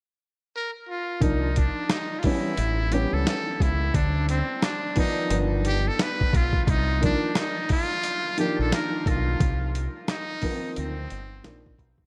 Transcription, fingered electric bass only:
0, 0, Header, 1, 2, 480
1, 0, Start_track
1, 0, Tempo, 681818
1, 860, Time_signature, 4, 2, 24, 8
1, 8491, End_track
2, 0, Start_track
2, 0, Title_t, "Fingered electric bass"
2, 0, Program_c, 0, 33
2, 858, Note_on_c, 0, 36, 85
2, 1183, Note_off_c, 0, 36, 0
2, 1817, Note_on_c, 0, 33, 96
2, 2142, Note_off_c, 0, 33, 0
2, 2201, Note_on_c, 0, 37, 73
2, 2284, Note_off_c, 0, 37, 0
2, 2538, Note_on_c, 0, 37, 87
2, 2742, Note_off_c, 0, 37, 0
2, 2778, Note_on_c, 0, 38, 105
2, 3103, Note_off_c, 0, 38, 0
2, 3735, Note_on_c, 0, 31, 93
2, 4144, Note_off_c, 0, 31, 0
2, 4459, Note_on_c, 0, 35, 79
2, 4663, Note_off_c, 0, 35, 0
2, 4697, Note_on_c, 0, 36, 101
2, 5023, Note_off_c, 0, 36, 0
2, 6049, Note_on_c, 0, 34, 73
2, 6129, Note_off_c, 0, 34, 0
2, 6379, Note_on_c, 0, 35, 78
2, 6583, Note_off_c, 0, 35, 0
2, 6622, Note_on_c, 0, 36, 98
2, 6945, Note_off_c, 0, 36, 0
2, 7587, Note_on_c, 0, 38, 81
2, 7787, Note_off_c, 0, 38, 0
2, 7824, Note_on_c, 0, 31, 82
2, 8026, Note_off_c, 0, 31, 0
2, 8066, Note_on_c, 0, 34, 88
2, 8267, Note_off_c, 0, 34, 0
2, 8296, Note_on_c, 0, 35, 92
2, 8491, Note_off_c, 0, 35, 0
2, 8491, End_track
0, 0, End_of_file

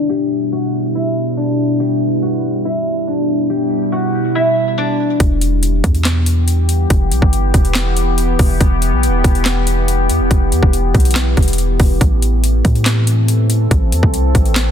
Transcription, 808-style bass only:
0, 0, Header, 1, 2, 480
1, 0, Start_track
1, 0, Key_signature, 1, "minor"
1, 0, Tempo, 425532
1, 107, Time_signature, 4, 2, 24, 8
1, 16596, End_track
2, 0, Start_track
2, 0, Title_t, "808-style bass"
2, 0, Program_c, 0, 38
2, 5867, Note_on_c, 0, 28, 115
2, 6558, Note_off_c, 0, 28, 0
2, 6586, Note_on_c, 0, 40, 108
2, 7741, Note_off_c, 0, 40, 0
2, 7787, Note_on_c, 0, 28, 109
2, 8026, Note_on_c, 0, 35, 99
2, 8043, Note_off_c, 0, 28, 0
2, 8140, Note_off_c, 0, 35, 0
2, 8145, Note_on_c, 0, 31, 102
2, 8491, Note_off_c, 0, 31, 0
2, 8506, Note_on_c, 0, 28, 104
2, 9428, Note_off_c, 0, 28, 0
2, 9468, Note_on_c, 0, 28, 105
2, 9698, Note_off_c, 0, 28, 0
2, 9707, Note_on_c, 0, 28, 112
2, 10067, Note_on_c, 0, 35, 98
2, 10084, Note_off_c, 0, 28, 0
2, 10246, Note_on_c, 0, 28, 101
2, 10263, Note_off_c, 0, 35, 0
2, 10418, Note_off_c, 0, 28, 0
2, 10427, Note_on_c, 0, 28, 108
2, 11386, Note_on_c, 0, 40, 95
2, 11403, Note_off_c, 0, 28, 0
2, 11506, Note_on_c, 0, 28, 96
2, 11523, Note_off_c, 0, 40, 0
2, 11621, Note_off_c, 0, 28, 0
2, 11627, Note_on_c, 0, 28, 108
2, 11867, Note_on_c, 0, 40, 100
2, 11884, Note_off_c, 0, 28, 0
2, 11978, Note_off_c, 0, 40, 0
2, 11985, Note_on_c, 0, 28, 100
2, 12332, Note_off_c, 0, 28, 0
2, 12346, Note_on_c, 0, 35, 109
2, 12807, Note_off_c, 0, 35, 0
2, 12828, Note_on_c, 0, 28, 99
2, 13288, Note_off_c, 0, 28, 0
2, 13307, Note_on_c, 0, 28, 99
2, 13537, Note_off_c, 0, 28, 0
2, 13547, Note_on_c, 0, 33, 115
2, 14238, Note_off_c, 0, 33, 0
2, 14266, Note_on_c, 0, 45, 109
2, 15421, Note_off_c, 0, 45, 0
2, 15465, Note_on_c, 0, 33, 112
2, 15707, Note_on_c, 0, 40, 104
2, 15724, Note_off_c, 0, 33, 0
2, 15818, Note_off_c, 0, 40, 0
2, 15825, Note_on_c, 0, 36, 96
2, 16171, Note_off_c, 0, 36, 0
2, 16185, Note_on_c, 0, 33, 104
2, 16596, Note_off_c, 0, 33, 0
2, 16596, End_track
0, 0, End_of_file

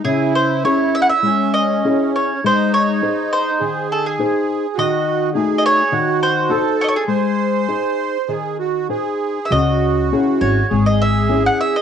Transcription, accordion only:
0, 0, Header, 1, 2, 480
1, 0, Start_track
1, 0, Key_signature, 4, "minor"
1, 0, Tempo, 598802
1, 33, Time_signature, 4, 2, 24, 8
1, 1952, Tempo, 581395
1, 5792, Tempo, 600601
1, 9574, End_track
2, 0, Start_track
2, 0, Title_t, "Accordion"
2, 0, Program_c, 0, 21
2, 44, Note_on_c, 0, 64, 89
2, 1002, Note_on_c, 0, 61, 84
2, 1027, Note_off_c, 0, 64, 0
2, 1924, Note_off_c, 0, 61, 0
2, 1963, Note_on_c, 0, 63, 95
2, 2913, Note_on_c, 0, 68, 88
2, 2952, Note_off_c, 0, 63, 0
2, 3865, Note_on_c, 0, 66, 94
2, 3904, Note_off_c, 0, 68, 0
2, 4314, Note_off_c, 0, 66, 0
2, 4351, Note_on_c, 0, 68, 95
2, 4826, Note_on_c, 0, 66, 95
2, 4842, Note_off_c, 0, 68, 0
2, 5298, Note_on_c, 0, 69, 102
2, 5319, Note_off_c, 0, 66, 0
2, 5755, Note_off_c, 0, 69, 0
2, 5785, Note_on_c, 0, 72, 105
2, 6757, Note_on_c, 0, 68, 79
2, 6778, Note_off_c, 0, 72, 0
2, 6981, Note_off_c, 0, 68, 0
2, 6996, Note_on_c, 0, 66, 86
2, 7222, Note_off_c, 0, 66, 0
2, 7240, Note_on_c, 0, 68, 93
2, 7724, Note_on_c, 0, 66, 89
2, 7741, Note_off_c, 0, 68, 0
2, 8655, Note_off_c, 0, 66, 0
2, 8678, Note_on_c, 0, 68, 87
2, 9574, Note_off_c, 0, 68, 0
2, 9574, End_track
0, 0, End_of_file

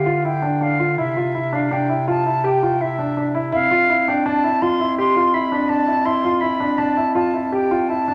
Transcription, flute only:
0, 0, Header, 1, 2, 480
1, 0, Start_track
1, 0, Tempo, 364299
1, 1295, Time_signature, 7, 2, 24, 8
1, 10728, End_track
2, 0, Start_track
2, 0, Title_t, "Flute"
2, 0, Program_c, 0, 73
2, 0, Note_on_c, 0, 77, 69
2, 335, Note_on_c, 0, 79, 72
2, 355, Note_off_c, 0, 77, 0
2, 822, Note_on_c, 0, 77, 69
2, 842, Note_off_c, 0, 79, 0
2, 1297, Note_off_c, 0, 77, 0
2, 1305, Note_on_c, 0, 76, 70
2, 2041, Note_on_c, 0, 77, 78
2, 2061, Note_off_c, 0, 76, 0
2, 2278, Note_on_c, 0, 79, 71
2, 2298, Note_off_c, 0, 77, 0
2, 2749, Note_off_c, 0, 79, 0
2, 2760, Note_on_c, 0, 81, 74
2, 3230, Note_on_c, 0, 79, 82
2, 3250, Note_off_c, 0, 81, 0
2, 3705, Note_on_c, 0, 76, 73
2, 3724, Note_off_c, 0, 79, 0
2, 4327, Note_off_c, 0, 76, 0
2, 4659, Note_on_c, 0, 77, 91
2, 5382, Note_on_c, 0, 79, 88
2, 5402, Note_off_c, 0, 77, 0
2, 5618, Note_on_c, 0, 81, 86
2, 5638, Note_off_c, 0, 79, 0
2, 6087, Note_on_c, 0, 84, 92
2, 6107, Note_off_c, 0, 81, 0
2, 6560, Note_off_c, 0, 84, 0
2, 6568, Note_on_c, 0, 84, 96
2, 7035, Note_on_c, 0, 83, 88
2, 7054, Note_off_c, 0, 84, 0
2, 7500, Note_on_c, 0, 81, 93
2, 7520, Note_off_c, 0, 83, 0
2, 7977, Note_on_c, 0, 84, 94
2, 7997, Note_off_c, 0, 81, 0
2, 8441, Note_on_c, 0, 83, 83
2, 8461, Note_off_c, 0, 84, 0
2, 8938, Note_on_c, 0, 81, 84
2, 8958, Note_off_c, 0, 83, 0
2, 9421, Note_off_c, 0, 81, 0
2, 9429, Note_on_c, 0, 81, 73
2, 9821, Note_off_c, 0, 81, 0
2, 9821, Note_on_c, 0, 81, 57
2, 9919, Note_on_c, 0, 79, 80
2, 9939, Note_off_c, 0, 81, 0
2, 10392, Note_on_c, 0, 81, 74
2, 10412, Note_off_c, 0, 79, 0
2, 10728, Note_off_c, 0, 81, 0
2, 10728, End_track
0, 0, End_of_file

